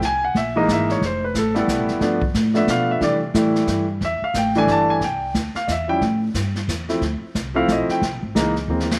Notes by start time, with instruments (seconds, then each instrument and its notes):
0.01 upright bass C2, brush sweep, kick, snare
0.05 grand piano G#5
0.25 grand piano F#5
0.35 upright bass A#1, grand piano E5, kick, snare
0.56 grand piano E3 G#3 A#3 D#4 D#5
0.68 upright bass G#1, kick, snare, hi-hat pedal
0.73 grand piano E5
0.89 grand piano C#5, snare
1.01 upright bass F1, brush sweep, kick, snare
1.06 grand piano C5
1.24 grand piano B4
1.34 upright bass A1, grand piano A4, kick, snare, hi-hat pedal
1.54 grand piano G3 A3 B3 E4, snare
1.59 grand piano A4
1.67 upright bass C2, kick, snare, hi-hat pedal
1.79 upright bass A1
1.88 upright bass F1, snare
2.00 upright bass G2, grand piano F3 A3 B3 D4, brush sweep, kick, snare
2.22 kick
2.34 upright bass A2, kick, snare, hi-hat pedal
2.54 grand piano F3 A3 B3 D4 E5, snare
2.67 upright bass B2, grand piano F5, kick, snare, hi-hat pedal
2.91 grand piano E5
3.01 upright bass C3, grand piano E3 G3 A3 D4 D5, brush sweep, kick, snare
3.34 upright bass A2, grand piano E3 G3 A3 E4, kick, snare, hi-hat pedal
3.55 snare
3.67 upright bass G2, kick, snare, hi-hat pedal
4.01 upright bass E2, brush sweep, kick, snare
4.05 grand piano E5
4.22 grand piano F5, muted upright bass stroke
4.34 upright bass A1, grand piano G5, kick, snare, hi-hat pedal
4.55 grand piano E3 G3 A3 D4 G#5, snare
4.67 upright bass G1, kick, snare
4.72 grand piano A5
4.90 grand piano G#5
5.01 upright bass C2, grand piano G5, brush sweep, kick, snare
5.34 upright bass D2, kick, snare, hi-hat pedal
5.54 grand piano F5, muted upright bass stroke, snare
5.67 upright bass E2, grand piano D#5, kick, snare, hi-hat pedal
5.71 grand piano E5
5.88 grand piano F3 G3 C#4 E4 G5
6.01 upright bass A2, brush sweep, kick, snare
6.34 upright bass G2, kick, snare, hi-hat pedal
6.55 snare
6.68 upright bass E2, kick, snare, hi-hat pedal
6.89 grand piano F3 A3 C4 E4, snare
7.01 upright bass D2, brush sweep, kick, snare
7.21 muted upright bass stroke
7.35 upright bass C2, kick, snare, hi-hat pedal
7.54 grand piano F3 A3 C4 E4 F5
7.68 upright bass B1, kick, snare, hi-hat pedal
7.72 grand piano D#5
7.89 grand piano G5, muted upright bass stroke, snare
8.01 upright bass C2, brush sweep, kick, snare
8.12 upright bass A#1
8.22 upright bass G#1
8.35 upright bass C#2, grand piano E3 G#3 A#3 D#4, kick, snare, hi-hat pedal
8.56 snare
8.68 upright bass D#2, grand piano E3 G#3 A#3 C4
8.80 snare
8.91 snare